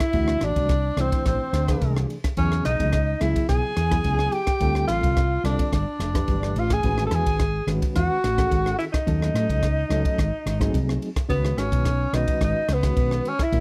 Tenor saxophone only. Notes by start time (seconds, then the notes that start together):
Already playing: E4
0.44 D4
1.00 C4
1.27 C4
2.38 C#4
2.65 D#4
3.21 E4
3.49 G#4
4.33 G4
4.88 F4
5.45 D4
5.74 D4
6.59 F4
6.73 G#4
7.07 A4
7.15 G#4
7.96 F#4
8.78 E4
8.93 D#4
11.29 B3
11.58 C#4
12.15 D#4
12.44 D#4
12.73 B3
13.28 C#4
13.43 E4